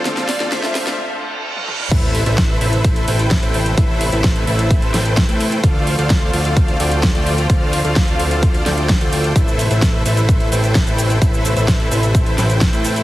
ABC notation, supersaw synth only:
X:1
M:4/4
L:1/16
Q:1/4=129
K:Am
V:1 name="Supersaw synth"
[FAcdf]3 [FAcdf] [FAcdf]3 [FAcdf] z8 | [EABce]3 [EABce]3 [EABce]4 [EABcg]3 [EABcg]3 | [ABc]3 [EABce]3 [EABce]4 [EABcg]3 [EABcg]3 | [FAcdf]3 [FAcdf]3 [FAcdf]4 [FAcdg]3 [FAcdg]3 |
[Fcdf]3 [FAcdf]3 [FAcdf]4 [FAcdg]3 [FAcdg]3 | [EBce]3 [EABce]3 [EABce]4 [EABcg]3 [EABcg]3 | [EABce]3 [EABce]3 [EABce]4 [EABcg]3 [EABcg]3 |]